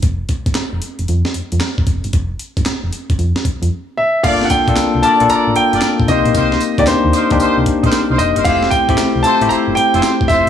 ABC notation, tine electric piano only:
X:1
M:4/4
L:1/16
Q:"Swing 16ths" 1/4=114
K:Gdor
V:1 name="Tine electric piano"
z16 | z16 | [B,DFA]3 [B,DFA]3 z [B,DFA]6- [B,DFA] [B,C_EG]2- | [B,C_EG]2 z [B,DEG]3 z [B,DEG]6- [B,DEG] z2 |
[A,CEG]3 [A,CEG]3 z [A,CEG]6- [A,CEG] z2 |]